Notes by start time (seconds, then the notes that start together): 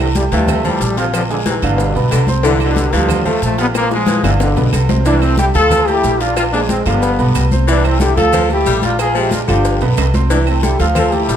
Already playing: C2 E3 E4 E5
0.01 A2 C3
0.15 E3 G3 G4 G5, cowbell, high conga, short guiro, maracas
0.32 D2 E3 F3 G3 A3 G4 F5, cowbell, high conga, low agogo, short guiro, maracas
0.48 cowbell, high conga, low conga, low agogo, long guiro, claves, maracas
0.65 E3 F3 G3 A3 A4 A5, high conga, low conga, low agogo, maracas
0.80 A#1, cowbell, high conga, short guiro, maracas
0.97 C3 D3 F3 F4 F5 F6, cowbell, low agogo, short guiro, maracas
1.14 D3 F3, cowbell, high conga, low agogo, long guiro, claves, maracas
1.30 A#2 D3 G#3 G#4 G#5, high conga, maracas
1.46 G#2 C3 E3, cowbell, high conga, low agogo, short guiro, maracas
1.62 G1 G2 B2 D3 D4 F5, low agogo, short guiro, claves, maracas
1.78 cowbell, high conga, long guiro, maracas
1.95 B1 B3 B4 B5, high conga, low agogo, maracas
2.11 C2 D3, cowbell, high conga, low agogo, short guiro, claves, maracas
2.27 C4 C5 C6, high conga, short guiro, maracas
2.43 G2 D3 E3 E4 E5, cowbell, high conga, low agogo, long guiro, maracas
2.60 B2 D3, high conga, low agogo, claves, maracas
2.76 G3 G4 G5, cowbell, high conga, short guiro, maracas
2.93 D2 D3 E3 F3 G3 G4 F5, cowbell, high conga, low agogo, short guiro, maracas
3.09 cowbell, high conga, low conga, low agogo, long guiro, claves, maracas
3.25 F3 A3 A4 A5, high conga, low conga, low agogo, maracas
3.42 A#1 F3 A3, cowbell, high conga, short guiro, maracas
3.58 C3 G3 B3 F4 F5 F6, cowbell, low agogo, short guiro, maracas
3.74 F3 A#3, cowbell, high bongo, high conga, low agogo, long guiro, claves, maracas
3.91 F3 G#3 G#4 G#5, high bongo, high conga, maracas
4.07 E3, cowbell, high bongo, high conga, low agogo, short guiro, maracas
4.23 G1 C3 D3 E3 D4 F5, low bongo, low agogo, short guiro, claves, maracas
4.39 B2 D3, cowbell, low bongo, high conga, long guiro, maracas
4.56 B1 B3 B4 B5, low bongo, high conga, high timbale, low agogo, maracas
4.73 C2 D3, cowbell, high conga, low agogo, short guiro, claves, maracas
4.89 C4 C5 C6, low bongo, high conga, low timbale, short guiro, maracas
5.05 E3 G3 D4 E4 E5, cowbell, low agogo, long guiro, maracas
5.22 A3 C4, high conga, low agogo, claves, maracas
5.38 D3 G3 E4 G4 G5, cowbell, high conga, short guiro, maracas
5.54 D2 F3 F4 A4 F5, cowbell, high conga, low agogo, short guiro, maracas
5.71 F3, cowbell, high conga, low conga, low agogo, claves, maracas
5.87 A3 E4 G4 A4 A5, high conga, low agogo, maracas
6.04 A#1 G3, cowbell, high conga, low timbale, short guiro, maracas
6.20 D4 F4 F5 F6, cowbell, low agogo, short guiro, maracas
6.36 D4 F4, cowbell, high conga, low agogo, long guiro, claves, maracas
6.53 F3 G#3 A#3 D4 G#4 G#5, high conga, maracas
6.69 G#3 C4, cowbell, high conga, low agogo, short guiro, maracas
6.86 G1 D3 F3 G3 B3 F4 F5, low agogo, short guiro, claves, maracas
7.02 cowbell, high conga, long guiro, maracas
7.19 B1 B3 B4 B5, high conga, low agogo, maracas
7.35 C2, cowbell, high conga, low timbale, low agogo, short guiro, claves, maracas
7.51 C4 C5 C6, high conga, short guiro, maracas
7.67 E3 G3 D4 E4 E5, cowbell, low agogo, long guiro, maracas
7.84 A3 C4, high conga, low agogo, claves, maracas
8.00 D3 G3 E4 G4 G5, cowbell, high conga, short guiro, maracas
8.16 D2 F3 F4 A4 F5, cowbell, high conga, low agogo, short guiro, maracas
8.33 F3, cowbell, high conga, low conga, low agogo, long guiro, claves, maracas
8.49 A3 E4 G4 A4 A5, high conga, low agogo, maracas
8.66 A#1 G3, cowbell, high conga, short guiro, maracas
8.82 D4 F4 F5 F6, cowbell, high conga, low agogo, short guiro, maracas
8.99 F4 G#4, cowbell, high conga, low agogo, long guiro, claves, maracas
9.15 F3 G#3 E4 G4 G#4 G#5, high conga, maracas
9.31 D4 F4, cowbell, high conga, low agogo, short guiro, maracas
9.48 G1 D3 F3 D4 F4 G4 F5, low agogo, short guiro, claves, maracas
9.64 cowbell, high conga, long guiro, maracas
9.81 B1 B3 B4 B5, high conga, high timbale, low agogo, maracas
9.97 C2, cowbell, high conga, high timbale, low agogo, short guiro, claves, maracas
10.14 C4 C5 C6, high conga, low timbale, short guiro, maracas
10.30 E3 G3 D4 E4 E5, cowbell, high conga, low agogo, long guiro, maracas
10.47 A3 C4, low agogo, claves, maracas
10.63 D3 G3 E4 G4 G5, cowbell, high conga, short guiro, maracas
10.79 D2 F3 F4 A4 F5, cowbell, high conga, low agogo, short guiro, maracas
10.95 F3 F4 A4, cowbell, high conga, low conga, low agogo, long guiro, claves, maracas
11.12 A3 E4 G4 A4 A5, high conga, low agogo, maracas
11.28 A#1 G3, cowbell, high conga, low timbale, short guiro, maracas